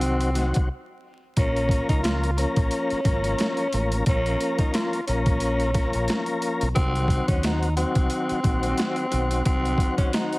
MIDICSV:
0, 0, Header, 1, 6, 480
1, 0, Start_track
1, 0, Key_signature, -5, "minor"
1, 0, Tempo, 674157
1, 975, Time_signature, 4, 2, 24, 8
1, 7396, End_track
2, 0, Start_track
2, 0, Title_t, "Tenor saxophone"
2, 0, Program_c, 0, 66
2, 0, Note_on_c, 0, 60, 80
2, 463, Note_off_c, 0, 60, 0
2, 985, Note_on_c, 0, 61, 99
2, 1333, Note_off_c, 0, 61, 0
2, 1346, Note_on_c, 0, 63, 88
2, 1438, Note_off_c, 0, 63, 0
2, 1443, Note_on_c, 0, 65, 78
2, 1664, Note_off_c, 0, 65, 0
2, 1699, Note_on_c, 0, 61, 84
2, 2868, Note_off_c, 0, 61, 0
2, 2912, Note_on_c, 0, 61, 107
2, 3256, Note_off_c, 0, 61, 0
2, 3268, Note_on_c, 0, 63, 88
2, 3364, Note_off_c, 0, 63, 0
2, 3376, Note_on_c, 0, 65, 83
2, 3592, Note_off_c, 0, 65, 0
2, 3609, Note_on_c, 0, 61, 94
2, 4438, Note_off_c, 0, 61, 0
2, 4807, Note_on_c, 0, 60, 99
2, 5163, Note_off_c, 0, 60, 0
2, 5182, Note_on_c, 0, 61, 87
2, 5280, Note_off_c, 0, 61, 0
2, 5301, Note_on_c, 0, 63, 76
2, 5514, Note_off_c, 0, 63, 0
2, 5528, Note_on_c, 0, 60, 86
2, 6703, Note_off_c, 0, 60, 0
2, 6734, Note_on_c, 0, 60, 101
2, 7087, Note_off_c, 0, 60, 0
2, 7099, Note_on_c, 0, 61, 93
2, 7199, Note_off_c, 0, 61, 0
2, 7217, Note_on_c, 0, 63, 81
2, 7396, Note_off_c, 0, 63, 0
2, 7396, End_track
3, 0, Start_track
3, 0, Title_t, "Tonewheel organ"
3, 0, Program_c, 1, 16
3, 0, Note_on_c, 1, 51, 92
3, 0, Note_on_c, 1, 54, 88
3, 0, Note_on_c, 1, 60, 89
3, 0, Note_on_c, 1, 66, 109
3, 215, Note_off_c, 1, 51, 0
3, 216, Note_off_c, 1, 54, 0
3, 216, Note_off_c, 1, 60, 0
3, 217, Note_off_c, 1, 66, 0
3, 245, Note_on_c, 1, 51, 98
3, 245, Note_on_c, 1, 54, 88
3, 247, Note_on_c, 1, 60, 91
3, 249, Note_on_c, 1, 66, 100
3, 490, Note_off_c, 1, 51, 0
3, 490, Note_off_c, 1, 54, 0
3, 491, Note_off_c, 1, 60, 0
3, 492, Note_off_c, 1, 66, 0
3, 971, Note_on_c, 1, 53, 99
3, 973, Note_on_c, 1, 58, 84
3, 974, Note_on_c, 1, 61, 83
3, 975, Note_on_c, 1, 70, 98
3, 1642, Note_off_c, 1, 53, 0
3, 1643, Note_off_c, 1, 58, 0
3, 1644, Note_off_c, 1, 61, 0
3, 1645, Note_off_c, 1, 70, 0
3, 1688, Note_on_c, 1, 53, 95
3, 1689, Note_on_c, 1, 58, 85
3, 1691, Note_on_c, 1, 61, 86
3, 1692, Note_on_c, 1, 70, 101
3, 2138, Note_off_c, 1, 53, 0
3, 2138, Note_off_c, 1, 58, 0
3, 2139, Note_off_c, 1, 61, 0
3, 2140, Note_off_c, 1, 70, 0
3, 2166, Note_on_c, 1, 53, 91
3, 2169, Note_on_c, 1, 58, 87
3, 2170, Note_on_c, 1, 61, 88
3, 2172, Note_on_c, 1, 70, 110
3, 2617, Note_off_c, 1, 53, 0
3, 2618, Note_off_c, 1, 58, 0
3, 2619, Note_off_c, 1, 61, 0
3, 2620, Note_off_c, 1, 70, 0
3, 2661, Note_on_c, 1, 53, 77
3, 2663, Note_on_c, 1, 58, 74
3, 2665, Note_on_c, 1, 61, 68
3, 2666, Note_on_c, 1, 70, 82
3, 2881, Note_off_c, 1, 53, 0
3, 2882, Note_off_c, 1, 58, 0
3, 2883, Note_off_c, 1, 61, 0
3, 2884, Note_off_c, 1, 70, 0
3, 2892, Note_on_c, 1, 53, 90
3, 2892, Note_on_c, 1, 58, 78
3, 2895, Note_on_c, 1, 61, 84
3, 2896, Note_on_c, 1, 70, 105
3, 3563, Note_off_c, 1, 53, 0
3, 3563, Note_off_c, 1, 58, 0
3, 3564, Note_off_c, 1, 61, 0
3, 3565, Note_off_c, 1, 70, 0
3, 3619, Note_on_c, 1, 53, 99
3, 3620, Note_on_c, 1, 58, 91
3, 3621, Note_on_c, 1, 61, 88
3, 3623, Note_on_c, 1, 70, 106
3, 4063, Note_off_c, 1, 53, 0
3, 4064, Note_off_c, 1, 58, 0
3, 4064, Note_off_c, 1, 61, 0
3, 4065, Note_off_c, 1, 70, 0
3, 4086, Note_on_c, 1, 53, 93
3, 4088, Note_on_c, 1, 58, 91
3, 4090, Note_on_c, 1, 61, 84
3, 4092, Note_on_c, 1, 70, 114
3, 4760, Note_off_c, 1, 53, 0
3, 4761, Note_off_c, 1, 58, 0
3, 4762, Note_off_c, 1, 61, 0
3, 4763, Note_off_c, 1, 70, 0
3, 4801, Note_on_c, 1, 51, 95
3, 4802, Note_on_c, 1, 54, 81
3, 4804, Note_on_c, 1, 60, 82
3, 4806, Note_on_c, 1, 66, 97
3, 5478, Note_off_c, 1, 51, 0
3, 5478, Note_off_c, 1, 54, 0
3, 5479, Note_off_c, 1, 60, 0
3, 5480, Note_off_c, 1, 66, 0
3, 5529, Note_on_c, 1, 51, 101
3, 5531, Note_on_c, 1, 54, 83
3, 5532, Note_on_c, 1, 60, 78
3, 5535, Note_on_c, 1, 66, 107
3, 5978, Note_off_c, 1, 51, 0
3, 5979, Note_off_c, 1, 54, 0
3, 5980, Note_off_c, 1, 60, 0
3, 5981, Note_off_c, 1, 66, 0
3, 6001, Note_on_c, 1, 51, 96
3, 6002, Note_on_c, 1, 54, 83
3, 6004, Note_on_c, 1, 60, 94
3, 6006, Note_on_c, 1, 66, 114
3, 6454, Note_off_c, 1, 51, 0
3, 6455, Note_off_c, 1, 54, 0
3, 6456, Note_off_c, 1, 60, 0
3, 6457, Note_off_c, 1, 66, 0
3, 6485, Note_on_c, 1, 51, 75
3, 6486, Note_on_c, 1, 54, 76
3, 6488, Note_on_c, 1, 60, 66
3, 6490, Note_on_c, 1, 66, 83
3, 6713, Note_off_c, 1, 51, 0
3, 6714, Note_off_c, 1, 54, 0
3, 6715, Note_off_c, 1, 60, 0
3, 6716, Note_off_c, 1, 66, 0
3, 6726, Note_on_c, 1, 51, 96
3, 6728, Note_on_c, 1, 54, 82
3, 6729, Note_on_c, 1, 60, 78
3, 6731, Note_on_c, 1, 66, 103
3, 7396, Note_off_c, 1, 51, 0
3, 7396, Note_off_c, 1, 54, 0
3, 7396, Note_off_c, 1, 60, 0
3, 7396, Note_off_c, 1, 66, 0
3, 7396, End_track
4, 0, Start_track
4, 0, Title_t, "Fingered electric bass"
4, 0, Program_c, 2, 33
4, 0, Note_on_c, 2, 36, 89
4, 363, Note_off_c, 2, 36, 0
4, 404, Note_on_c, 2, 36, 93
4, 483, Note_off_c, 2, 36, 0
4, 979, Note_on_c, 2, 34, 111
4, 1281, Note_off_c, 2, 34, 0
4, 1350, Note_on_c, 2, 37, 89
4, 1738, Note_off_c, 2, 37, 0
4, 1831, Note_on_c, 2, 34, 89
4, 1915, Note_off_c, 2, 34, 0
4, 2175, Note_on_c, 2, 32, 100
4, 2369, Note_off_c, 2, 32, 0
4, 2660, Note_on_c, 2, 33, 94
4, 2852, Note_off_c, 2, 33, 0
4, 2899, Note_on_c, 2, 34, 113
4, 3091, Note_off_c, 2, 34, 0
4, 3622, Note_on_c, 2, 34, 95
4, 4205, Note_off_c, 2, 34, 0
4, 4235, Note_on_c, 2, 34, 89
4, 4318, Note_off_c, 2, 34, 0
4, 4714, Note_on_c, 2, 35, 100
4, 4798, Note_off_c, 2, 35, 0
4, 4818, Note_on_c, 2, 36, 112
4, 5120, Note_off_c, 2, 36, 0
4, 5188, Note_on_c, 2, 39, 83
4, 5577, Note_off_c, 2, 39, 0
4, 5669, Note_on_c, 2, 36, 96
4, 5755, Note_off_c, 2, 36, 0
4, 6015, Note_on_c, 2, 34, 88
4, 6209, Note_off_c, 2, 34, 0
4, 6501, Note_on_c, 2, 35, 90
4, 6693, Note_off_c, 2, 35, 0
4, 6739, Note_on_c, 2, 36, 102
4, 6931, Note_off_c, 2, 36, 0
4, 7396, End_track
5, 0, Start_track
5, 0, Title_t, "Muted fingered electric bass strokes"
5, 2076, Note_on_c, 9, 29, 48
5, 2148, Note_off_c, 9, 29, 0
5, 5915, Note_on_c, 9, 29, 49
5, 5986, Note_off_c, 9, 29, 0
5, 7396, End_track
6, 0, Start_track
6, 0, Title_t, "Drums"
6, 9, Note_on_c, 9, 42, 88
6, 80, Note_off_c, 9, 42, 0
6, 146, Note_on_c, 9, 42, 54
6, 217, Note_off_c, 9, 42, 0
6, 252, Note_on_c, 9, 42, 79
6, 263, Note_on_c, 9, 38, 35
6, 323, Note_off_c, 9, 42, 0
6, 334, Note_off_c, 9, 38, 0
6, 386, Note_on_c, 9, 42, 55
6, 402, Note_on_c, 9, 36, 101
6, 457, Note_off_c, 9, 42, 0
6, 473, Note_off_c, 9, 36, 0
6, 973, Note_on_c, 9, 42, 103
6, 976, Note_on_c, 9, 36, 107
6, 1044, Note_off_c, 9, 42, 0
6, 1047, Note_off_c, 9, 36, 0
6, 1114, Note_on_c, 9, 42, 38
6, 1185, Note_off_c, 9, 42, 0
6, 1202, Note_on_c, 9, 36, 95
6, 1219, Note_on_c, 9, 42, 71
6, 1273, Note_off_c, 9, 36, 0
6, 1290, Note_off_c, 9, 42, 0
6, 1347, Note_on_c, 9, 36, 98
6, 1347, Note_on_c, 9, 42, 62
6, 1418, Note_off_c, 9, 36, 0
6, 1418, Note_off_c, 9, 42, 0
6, 1453, Note_on_c, 9, 42, 89
6, 1460, Note_on_c, 9, 40, 92
6, 1463, Note_on_c, 9, 38, 114
6, 1525, Note_off_c, 9, 42, 0
6, 1532, Note_off_c, 9, 40, 0
6, 1534, Note_off_c, 9, 38, 0
6, 1592, Note_on_c, 9, 42, 35
6, 1663, Note_off_c, 9, 42, 0
6, 1694, Note_on_c, 9, 42, 83
6, 1766, Note_off_c, 9, 42, 0
6, 1826, Note_on_c, 9, 42, 60
6, 1828, Note_on_c, 9, 36, 101
6, 1897, Note_off_c, 9, 42, 0
6, 1899, Note_off_c, 9, 36, 0
6, 1929, Note_on_c, 9, 42, 88
6, 2000, Note_off_c, 9, 42, 0
6, 2067, Note_on_c, 9, 42, 36
6, 2138, Note_off_c, 9, 42, 0
6, 2171, Note_on_c, 9, 42, 84
6, 2173, Note_on_c, 9, 36, 97
6, 2242, Note_off_c, 9, 42, 0
6, 2244, Note_off_c, 9, 36, 0
6, 2306, Note_on_c, 9, 42, 55
6, 2378, Note_off_c, 9, 42, 0
6, 2410, Note_on_c, 9, 42, 80
6, 2423, Note_on_c, 9, 40, 97
6, 2425, Note_on_c, 9, 38, 119
6, 2481, Note_off_c, 9, 42, 0
6, 2494, Note_off_c, 9, 40, 0
6, 2497, Note_off_c, 9, 38, 0
6, 2542, Note_on_c, 9, 42, 39
6, 2613, Note_off_c, 9, 42, 0
6, 2653, Note_on_c, 9, 42, 80
6, 2724, Note_off_c, 9, 42, 0
6, 2789, Note_on_c, 9, 42, 55
6, 2860, Note_off_c, 9, 42, 0
6, 2892, Note_on_c, 9, 42, 104
6, 2896, Note_on_c, 9, 36, 109
6, 2963, Note_off_c, 9, 42, 0
6, 2967, Note_off_c, 9, 36, 0
6, 3033, Note_on_c, 9, 42, 38
6, 3104, Note_off_c, 9, 42, 0
6, 3137, Note_on_c, 9, 42, 66
6, 3208, Note_off_c, 9, 42, 0
6, 3265, Note_on_c, 9, 42, 60
6, 3266, Note_on_c, 9, 36, 96
6, 3336, Note_off_c, 9, 42, 0
6, 3337, Note_off_c, 9, 36, 0
6, 3373, Note_on_c, 9, 42, 92
6, 3380, Note_on_c, 9, 40, 93
6, 3382, Note_on_c, 9, 38, 111
6, 3444, Note_off_c, 9, 42, 0
6, 3451, Note_off_c, 9, 40, 0
6, 3453, Note_off_c, 9, 38, 0
6, 3511, Note_on_c, 9, 42, 36
6, 3582, Note_off_c, 9, 42, 0
6, 3613, Note_on_c, 9, 42, 85
6, 3685, Note_off_c, 9, 42, 0
6, 3744, Note_on_c, 9, 42, 60
6, 3747, Note_on_c, 9, 36, 102
6, 3816, Note_off_c, 9, 42, 0
6, 3818, Note_off_c, 9, 36, 0
6, 3847, Note_on_c, 9, 42, 92
6, 3918, Note_off_c, 9, 42, 0
6, 3985, Note_on_c, 9, 42, 37
6, 4056, Note_off_c, 9, 42, 0
6, 4090, Note_on_c, 9, 42, 83
6, 4092, Note_on_c, 9, 36, 100
6, 4102, Note_on_c, 9, 38, 36
6, 4161, Note_off_c, 9, 42, 0
6, 4163, Note_off_c, 9, 36, 0
6, 4173, Note_off_c, 9, 38, 0
6, 4224, Note_on_c, 9, 42, 55
6, 4296, Note_off_c, 9, 42, 0
6, 4328, Note_on_c, 9, 42, 84
6, 4342, Note_on_c, 9, 40, 97
6, 4344, Note_on_c, 9, 38, 120
6, 4399, Note_off_c, 9, 42, 0
6, 4413, Note_off_c, 9, 40, 0
6, 4415, Note_off_c, 9, 38, 0
6, 4459, Note_on_c, 9, 42, 39
6, 4530, Note_off_c, 9, 42, 0
6, 4571, Note_on_c, 9, 42, 79
6, 4642, Note_off_c, 9, 42, 0
6, 4707, Note_on_c, 9, 42, 58
6, 4778, Note_off_c, 9, 42, 0
6, 4810, Note_on_c, 9, 42, 103
6, 4815, Note_on_c, 9, 36, 110
6, 4881, Note_off_c, 9, 42, 0
6, 4886, Note_off_c, 9, 36, 0
6, 4951, Note_on_c, 9, 42, 38
6, 5023, Note_off_c, 9, 42, 0
6, 5041, Note_on_c, 9, 36, 94
6, 5057, Note_on_c, 9, 42, 68
6, 5112, Note_off_c, 9, 36, 0
6, 5128, Note_off_c, 9, 42, 0
6, 5185, Note_on_c, 9, 42, 61
6, 5186, Note_on_c, 9, 36, 99
6, 5256, Note_off_c, 9, 42, 0
6, 5257, Note_off_c, 9, 36, 0
6, 5292, Note_on_c, 9, 42, 90
6, 5300, Note_on_c, 9, 40, 92
6, 5302, Note_on_c, 9, 38, 116
6, 5364, Note_off_c, 9, 42, 0
6, 5371, Note_off_c, 9, 40, 0
6, 5373, Note_off_c, 9, 38, 0
6, 5430, Note_on_c, 9, 42, 36
6, 5501, Note_off_c, 9, 42, 0
6, 5532, Note_on_c, 9, 42, 85
6, 5603, Note_off_c, 9, 42, 0
6, 5663, Note_on_c, 9, 42, 58
6, 5666, Note_on_c, 9, 36, 105
6, 5734, Note_off_c, 9, 42, 0
6, 5737, Note_off_c, 9, 36, 0
6, 5766, Note_on_c, 9, 42, 91
6, 5837, Note_off_c, 9, 42, 0
6, 5905, Note_on_c, 9, 42, 37
6, 5976, Note_off_c, 9, 42, 0
6, 6010, Note_on_c, 9, 42, 81
6, 6012, Note_on_c, 9, 36, 101
6, 6081, Note_off_c, 9, 42, 0
6, 6083, Note_off_c, 9, 36, 0
6, 6144, Note_on_c, 9, 42, 58
6, 6215, Note_off_c, 9, 42, 0
6, 6248, Note_on_c, 9, 42, 80
6, 6261, Note_on_c, 9, 40, 93
6, 6263, Note_on_c, 9, 38, 124
6, 6319, Note_off_c, 9, 42, 0
6, 6333, Note_off_c, 9, 40, 0
6, 6335, Note_off_c, 9, 38, 0
6, 6380, Note_on_c, 9, 42, 38
6, 6451, Note_off_c, 9, 42, 0
6, 6491, Note_on_c, 9, 42, 82
6, 6562, Note_off_c, 9, 42, 0
6, 6627, Note_on_c, 9, 42, 58
6, 6699, Note_off_c, 9, 42, 0
6, 6732, Note_on_c, 9, 42, 100
6, 6736, Note_on_c, 9, 36, 109
6, 6803, Note_off_c, 9, 42, 0
6, 6807, Note_off_c, 9, 36, 0
6, 6874, Note_on_c, 9, 42, 37
6, 6945, Note_off_c, 9, 42, 0
6, 6962, Note_on_c, 9, 36, 93
6, 6978, Note_on_c, 9, 42, 71
6, 7033, Note_off_c, 9, 36, 0
6, 7049, Note_off_c, 9, 42, 0
6, 7106, Note_on_c, 9, 42, 61
6, 7107, Note_on_c, 9, 36, 101
6, 7177, Note_off_c, 9, 42, 0
6, 7178, Note_off_c, 9, 36, 0
6, 7214, Note_on_c, 9, 42, 92
6, 7221, Note_on_c, 9, 40, 96
6, 7223, Note_on_c, 9, 38, 118
6, 7285, Note_off_c, 9, 42, 0
6, 7292, Note_off_c, 9, 40, 0
6, 7294, Note_off_c, 9, 38, 0
6, 7351, Note_on_c, 9, 42, 36
6, 7396, Note_off_c, 9, 42, 0
6, 7396, End_track
0, 0, End_of_file